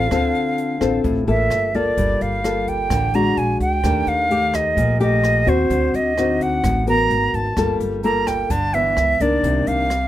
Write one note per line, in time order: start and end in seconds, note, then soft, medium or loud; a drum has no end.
0.00 1.00 F5 medium
0.11 0.33 D2 medium
0.11 1.02 D3 medium
0.11 0.77 C4 soft
0.11 0.77 F4 medium
0.11 0.78 A4 medium
0.11 kick medium
0.11 cross-stick medium
0.11 closed hi-hat soft
0.35 closed hi-hat soft
0.58 closed hi-hat soft
0.81 1.03 A1 medium
0.81 1.23 C4 medium
0.81 1.24 F4 medium
0.81 1.24 A4 medium
0.81 kick soft
0.81 cross-stick medium
0.81 closed hi-hat soft
1.04 1.26 A1 medium
1.04 1.48 A2 medium
1.04 kick medium
1.04 closed hi-hat soft
1.27 1.49 A1 medium
1.27 1.70 A#3 medium
1.27 1.70 F4 medium
1.27 1.70 A4 medium
1.27 1.77 E5 medium
1.27 closed hi-hat soft
1.50 1.94 G1 medium
1.50 cross-stick soft
1.50 closed hi-hat soft
1.74 2.42 A#3 medium
1.74 2.42 F4 medium
1.74 2.43 A4 medium
1.74 2.23 D5 medium
1.74 kick soft
1.74 closed hi-hat soft
1.97 2.19 G1 medium
1.97 2.88 G3 soft
1.97 kick medium
1.97 closed hi-hat medium
2.21 2.87 G1 medium
2.21 2.70 F5 medium
2.21 closed hi-hat soft
2.44 3.10 A#3 soft
2.44 3.10 F4 medium
2.44 3.11 A4 medium
2.44 cross-stick medium
2.44 closed hi-hat soft
2.67 3.17 G5 medium
2.67 kick soft
2.67 closed hi-hat soft
2.90 3.34 A1 medium
2.90 3.35 D3 medium
2.90 kick medium
2.90 cross-stick medium
2.90 closed hi-hat medium
3.14 3.80 G#3 medium
3.14 3.80 D4 medium
3.14 3.81 F#4 medium
3.14 3.39 A#5 loud
3.14 closed hi-hat soft
3.37 3.59 A#1 medium
3.37 3.61 G#5 medium
3.37 closed hi-hat soft
3.60 3.82 C#2 medium
3.60 4.10 G5 medium
3.60 kick soft
3.60 closed hi-hat soft
3.84 4.05 D#2 medium
3.84 4.75 D#3 medium
3.84 4.27 A3 medium
3.84 4.27 D4 medium
3.84 4.27 G4 medium
3.84 kick medium
3.84 cross-stick medium
3.84 closed hi-hat medium
4.07 4.73 D#2 medium
4.07 4.57 F5 medium
4.07 closed hi-hat soft
4.30 4.96 A3 soft
4.30 4.97 G4 medium
4.30 closed hi-hat soft
4.54 5.01 D#5 medium
4.54 kick soft
4.54 cross-stick medium
4.54 closed hi-hat soft
4.77 5.43 A#1 medium
4.77 5.68 A#2 medium
4.77 kick medium
4.77 closed hi-hat medium
5.00 5.43 A3 medium
5.00 5.43 G4 medium
5.00 5.50 D#5 medium
5.00 closed hi-hat soft
5.24 cross-stick medium
5.24 closed hi-hat soft
5.46 5.69 D#2 medium
5.46 6.13 C4 medium
5.46 6.13 F#4 medium
5.46 5.97 C5 medium
5.46 kick soft
5.46 closed hi-hat soft
5.70 5.92 D2 medium
5.70 6.61 D3 medium
5.70 kick medium
5.70 closed hi-hat medium
5.94 6.59 D2 medium
5.94 6.44 D#5 medium
5.94 closed hi-hat soft
6.18 6.83 C4 soft
6.18 6.83 D#4 medium
6.18 6.84 F#4 medium
6.18 cross-stick medium
6.18 closed hi-hat soft
6.40 6.88 F#5 medium
6.40 kick soft
6.40 closed hi-hat soft
6.64 7.07 A1 medium
6.64 7.08 A2 medium
6.64 kick medium
6.64 cross-stick medium
6.64 closed hi-hat medium
6.87 7.53 B3 medium
6.87 7.53 F#4 medium
6.87 7.53 A#4 medium
6.87 7.37 A#5 medium
6.87 closed hi-hat soft
7.10 7.32 G#1 medium
7.10 closed hi-hat soft
7.33 7.55 G#1 medium
7.33 7.77 A5 medium
7.33 kick soft
7.33 closed hi-hat soft
7.57 7.78 G1 medium
7.57 8.47 G3 soft
7.57 8.00 A#3 medium
7.57 8.00 F4 soft
7.57 8.00 A4 medium
7.57 kick medium
7.57 cross-stick medium
7.57 closed hi-hat medium
7.80 8.46 G1 medium
7.80 closed hi-hat soft
8.03 8.50 A#3 medium
8.03 8.50 F4 soft
8.03 8.50 A4 medium
8.03 8.29 A#5 medium
8.03 closed hi-hat soft
8.27 8.52 G5 medium
8.27 kick soft
8.27 cross-stick medium
8.27 closed hi-hat soft
8.50 8.93 G1 medium
8.50 8.94 D3 medium
8.50 8.75 A5 loud
8.50 kick medium
8.50 closed hi-hat medium
8.73 9.16 E3 medium
8.73 9.17 B3 medium
8.73 9.23 E5 medium
8.73 closed hi-hat soft
8.97 9.18 C#2 medium
8.97 cross-stick medium
8.97 closed hi-hat soft
9.20 9.41 C#2 medium
9.20 9.86 D#3 medium
9.20 9.86 A#3 medium
9.20 9.87 D4 medium
9.20 9.69 D5 medium
9.20 kick soft
9.20 closed hi-hat soft
9.43 9.65 C2 medium
9.43 10.08 C3 medium
9.43 kick medium
9.43 closed hi-hat medium
9.67 10.08 C2 medium
9.67 10.08 F5 medium
9.67 closed hi-hat soft
9.90 cross-stick medium
9.90 closed hi-hat soft